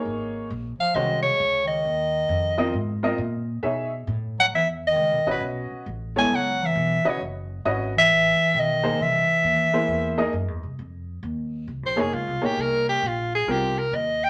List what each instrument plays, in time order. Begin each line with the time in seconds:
Already playing: upright piano A#3 D#4 G#4 C#5
0.05 upright bass G#1
0.50 upright bass A#1
0.79 bass clarinet F3, soprano saxophone F5, muted upright bass stroke
0.94 upright bass C2, bass clarinet D#3, upright piano G#3 C#4 F#4 C5, soprano saxophone D#5
1.22 bass clarinet C#3, soprano saxophone C#5
1.40 upright bass C#2
1.65 bass clarinet D#3, soprano saxophone D#5
1.85 upright bass D#2
2.29 upright bass F2
2.58 upright piano C4 F4 A#4 D#5
2.73 upright bass G#2
3.03 upright piano C4 F4 A#4 D#5
3.18 upright bass A#2
3.63 upright bass B2, upright piano D#4 G#4 C#5 E5
4.07 upright bass A2
4.39 bass clarinet F#3, soprano saxophone F#5
4.53 upright bass E2, bass clarinet E3, soprano saxophone E5
4.86 bass clarinet D#3, soprano saxophone D#5
4.96 upright bass C#2
5.11 upright bass B1
5.26 upright bass A1, bass clarinet B2, upright piano C#4 F#4 B4 D#5
5.31 soprano saxophone B4
5.41 upright bass B1
5.71 muted upright bass stroke
5.86 upright bass A1
6.16 bass clarinet G#3, upright piano B3 E4 A4 C#5, soprano saxophone G#5
6.31 upright bass C#2, bass clarinet F#3
6.35 soprano saxophone F#5
6.63 bass clarinet E3, soprano saxophone E5
6.75 upright bass B1
7.04 bass clarinet C#3, upright piano C#4 F#4 B4 D#5, muted upright bass stroke
7.09 soprano saxophone C#5
7.20 upright bass F#1
7.65 upright bass G#1, upright piano C#4 F#4 B4 D#5
7.97 bass clarinet E3, soprano saxophone E5
8.10 upright bass A1
8.39 muted upright bass stroke
8.54 upright bass B1, bass clarinet D#3
8.60 soprano saxophone D#5
8.83 upright piano A#3 D#4 G#4 C5
8.99 upright bass C2, bass clarinet E3, soprano saxophone E5
9.28 muted upright bass stroke
9.43 upright bass D#2
9.73 upright piano A#3 E4 G#4 C5, muted upright bass stroke
9.88 upright bass E2
10.18 upright piano A#3 D#4 G#4 D#5
10.33 upright bass F#2
10.48 upright bass E2
10.63 upright bass C2
10.79 upright bass F2
11.23 upright bass D#2
11.68 upright bass C2
11.83 upright bass A#1, soprano saxophone C5
11.96 upright bass F1, upright piano A#3 D#4 G#4 C#5
12.01 soprano saxophone G#4
12.13 upright bass C#2, soprano saxophone F4
12.27 upright bass C2
12.42 upright bass A#1, upright piano A#3 D#4 G#4 C#5, soprano saxophone G4
12.57 upright bass C2
12.61 soprano saxophone A#4
12.89 soprano saxophone G4
13.03 upright bass A#1
13.07 soprano saxophone F4
13.35 soprano saxophone G#4
13.47 upright bass C2, upright piano G3 C4 F4 A#4
13.52 soprano saxophone G4
13.79 soprano saxophone A#4
13.92 upright bass D#2, soprano saxophone D#5
14.24 soprano saxophone G5